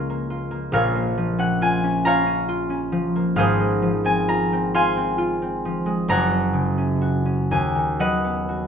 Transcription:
0.00 0.76 C#2 medium
0.00 0.77 C#3 medium
0.00 1.16 F3 medium
0.00 1.37 C#4 medium
0.00 0.29 F4 medium
0.00 0.72 A#4 medium
0.00 0.73 C#5 medium
0.00 0.72 F5 medium
0.00 2.03 A#5 loud
0.00 1.96 C#6 loud
0.10 0.50 A#3 medium
0.30 1.60 F4 medium
0.51 0.94 A#3 medium
0.72 3.42 A#1 medium
0.72 3.42 A#2 medium
0.72 3.42 A#4 medium
0.72 2.06 C#5 medium
0.72 2.06 F5 loud
0.95 3.14 A#3 medium
1.17 2.91 F3 medium
1.38 1.83 C#4 medium
1.38 1.78 F#5 loud
1.61 2.04 F4 medium
1.61 2.38 G#5 loud
1.84 2.25 C#4 medium
2.05 2.47 F4 medium
2.05 3.43 C#5 loud
2.05 3.35 F5 medium
2.05 3.42 A#5 loud
2.49 4.27 F4 medium
2.70 3.41 C#4 medium
2.92 3.81 F3 medium
3.16 3.42 A#3 medium
3.36 6.11 G#1 medium
3.36 6.11 G#2 medium
3.36 6.12 G#4 medium
3.36 6.12 C5 medium
3.36 4.74 F5 loud
3.60 5.85 G#3 medium
3.82 5.64 F3 medium
4.04 4.51 C4 medium
4.04 4.74 G#5 loud
4.28 4.73 F4 medium
4.28 5.05 A#5 loud
4.53 4.95 C4 medium
4.74 5.17 F4 medium
4.74 6.14 F5 medium
4.74 6.14 G#5 medium
4.74 6.13 C6 loud
4.97 5.41 C4 medium
5.18 6.12 F4 medium
5.42 6.13 C4 medium
5.65 6.13 F3 medium
5.86 6.12 G#3 medium
6.08 7.54 F#1 medium
6.08 7.54 F#2 medium
6.08 7.55 C#5 medium
6.08 7.99 F#5 medium
6.08 7.54 A#5 loud
6.32 7.98 F#3 medium
6.54 7.54 C#3 medium
6.78 7.24 C#4 medium
7.01 8.48 F#4 medium
7.26 7.54 C#4 medium
7.51 8.67 D#2 medium
7.51 8.34 G#5 medium
7.75 8.67 D#3 soft
7.99 8.67 F#3 medium
7.99 8.67 B4 medium
7.99 8.67 D#5 medium
7.99 8.67 F#5 medium
8.24 8.67 B3 soft
8.49 8.67 F#4 soft

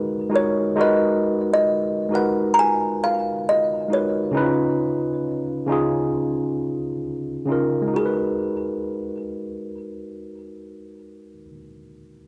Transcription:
0.00 0.30 G#3 medium
0.00 0.31 D#4 medium
0.00 0.32 F#4 medium
0.00 0.30 G#4 medium
0.00 0.34 A#4 medium
0.00 0.79 B4 medium
0.30 0.64 G#3 medium
0.30 0.65 D#4 medium
0.30 0.65 F#4 medium
0.34 0.66 A#4 medium
0.34 0.55 C#5 medium
0.34 0.67 C#5 medium
0.75 1.63 G#3 medium
0.75 1.64 D#4 medium
0.75 1.65 F#4 medium
0.80 1.66 A#4 medium
0.80 1.66 B4 loud
0.80 1.52 D#5 medium
1.54 2.15 D#5 loud
2.09 3.30 G#3 medium
2.09 3.31 D#4 medium
2.09 3.32 F#4 medium
2.14 3.33 A#4 medium
2.14 3.33 B4 medium
2.14 2.54 F#5 medium
2.54 2.58 A#5 medium
2.59 3.04 G#5 loud
3.04 3.49 F5 loud
3.49 3.94 D#5 medium
3.88 4.23 G#3 medium
3.88 4.23 D#4 medium
3.88 4.24 F#4 medium
3.93 4.25 A#4 medium
3.93 4.26 B4 medium
3.93 7.02 C#5 medium
4.31 5.20 C#3 medium
4.31 5.21 C#4 medium
4.31 5.22 D#4 medium
4.36 4.44 E4 medium
4.36 5.23 B4 loud
4.42 5.26 F4 medium
5.66 6.88 C#3 medium
5.66 6.89 C#4 medium
5.66 6.89 D#4 medium
5.71 6.90 F4 medium
5.71 6.91 G#4 medium
7.46 7.80 C#3 medium
7.46 7.81 C#4 medium
7.46 7.82 D#4 medium
7.50 7.83 F4 medium
7.50 7.83 A#4 medium
7.82 11.32 G#3 medium
7.88 11.38 D#4 medium
7.94 11.44 F#4 medium
7.94 11.47 G#4 medium
8.00 11.50 A#4 medium
8.06 11.56 B4 medium

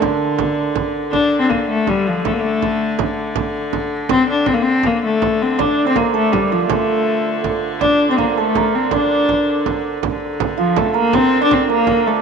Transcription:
0.00 1.13 D3 medium
0.00 0.95 D3 medium
0.00 3.74 D4 medium
0.00 2.75 A4 medium
0.00 1.81 C5 medium
0.00 1.36 D5 medium
0.00 0.82 E5 medium
0.00 frame drum medium
0.20 frame drum soft
0.38 frame drum medium
0.75 frame drum medium
1.12 5.60 D3 medium
1.12 1.40 D4 loud
1.12 frame drum medium
1.38 1.43 C4 loud
1.38 1.47 D4 medium
1.45 1.51 C4 medium
1.50 1.68 A#3 medium
1.50 frame drum medium
1.69 1.90 A3 medium
1.87 2.09 G3 medium
1.87 frame drum medium
2.07 2.24 F3 medium
2.25 2.34 A3 medium
2.25 frame drum medium
2.33 2.42 A#3 medium
2.41 3.19 A3 medium
2.62 frame drum medium
2.99 frame drum medium
3.36 frame drum medium
3.54 frame drum soft
3.73 frame drum medium
4.09 4.28 C4 loud
4.09 frame drum loud
4.30 4.48 D4 medium
4.46 4.55 C4 loud
4.46 frame drum medium
4.54 4.64 A#3 medium
4.62 4.88 C4 loud
4.62 frame drum soft
4.83 5.04 A#3 medium
4.83 frame drum medium
5.03 5.44 A3 medium
5.03 frame drum soft
5.22 frame drum medium
5.42 5.62 C4 medium
5.59 10.04 D3 medium
5.59 5.87 D4 loud
5.59 7.81 D5 medium
5.59 frame drum medium
5.77 frame drum soft
5.87 5.98 C4 loud
5.87 8.10 C5 medium
5.96 6.14 A#3 medium
5.96 6.20 A#4 medium
5.96 frame drum medium
6.14 6.34 A3 loud
6.14 6.71 A4 medium
6.32 6.53 G3 medium
6.32 frame drum medium
6.51 6.68 F3 medium
6.51 9.88 F4 medium
6.68 7.58 A3 medium
6.68 8.24 A4 medium
6.68 frame drum loud
6.89 frame drum soft
7.44 frame drum medium
7.81 8.07 D4 loud
7.81 8.92 D5 medium
7.81 frame drum medium
8.00 frame drum soft
8.10 8.18 C4 loud
8.10 10.75 C5 medium
8.18 8.29 A#3 medium
8.18 8.44 A#4 medium
8.18 frame drum medium
8.31 8.40 A#3 medium
8.38 8.77 A3 medium
8.38 8.63 A4 medium
8.55 10.82 A#4 medium
8.55 frame drum medium
8.75 8.92 C4 medium
8.91 9.81 D4 medium
8.91 11.39 D5 medium
8.91 frame drum medium
9.29 frame drum medium
9.47 frame drum soft
9.66 frame drum medium
10.03 12.22 D3 medium
10.03 frame drum medium
10.40 frame drum medium
10.58 10.79 F3 medium
10.58 12.22 F4 medium
10.76 10.95 A3 medium
10.76 11.00 A4 medium
10.76 frame drum loud
10.94 11.16 A#3 loud
10.94 11.69 A#4 medium
10.94 frame drum soft
11.13 11.42 C4 loud
11.13 11.51 C5 medium
11.13 frame drum loud
11.42 11.55 D4 loud
11.42 12.22 D5 loud
11.51 11.71 C4 medium
11.51 12.22 C5 medium
11.51 frame drum medium
11.70 12.08 A#3 loud
11.70 11.86 A#4 medium
11.87 12.13 A#4 medium
11.87 frame drum medium
12.06 12.22 A3 medium
12.06 12.22 A4 medium

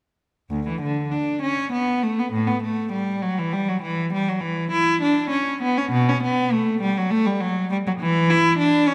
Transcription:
0.50 0.66 D2 medium
0.68 0.82 E3 medium
0.81 1.11 D3 medium
1.11 1.42 D4 medium
1.42 1.72 C#4 medium
1.73 2.02 B3 medium
2.03 2.17 A3 medium
2.19 2.33 B3 medium
2.33 2.47 A2 medium
2.48 2.62 B3 medium
2.63 2.92 A3 medium
2.92 3.21 G3 medium
3.22 3.37 F#3 medium
3.38 3.53 E3 medium
3.53 3.67 G3 medium
3.69 3.83 F#3 medium
3.82 4.12 E3 medium
4.13 4.27 G3 medium
4.29 4.43 F#3 medium
4.41 4.71 E3 medium
4.72 5.01 E4 medium
5.02 5.31 D4 medium
5.30 5.60 C#4 medium
5.62 5.77 B3 medium
5.78 5.93 C#4 medium
5.91 6.07 B2 loud
6.09 6.24 C#4 medium
6.23 6.52 B3 medium
6.53 6.82 A3 medium
6.81 6.96 G3 medium
6.98 7.11 F#3 medium
7.11 7.25 A3 loud
7.26 7.40 G3 medium
7.40 7.69 F#3 medium
7.71 7.77 G3 medium
7.87 7.92 F#3 medium
8.00 8.28 E3 medium
8.30 8.58 E4 loud
8.58 8.86 D4 loud
8.88 8.94 C#4 loud

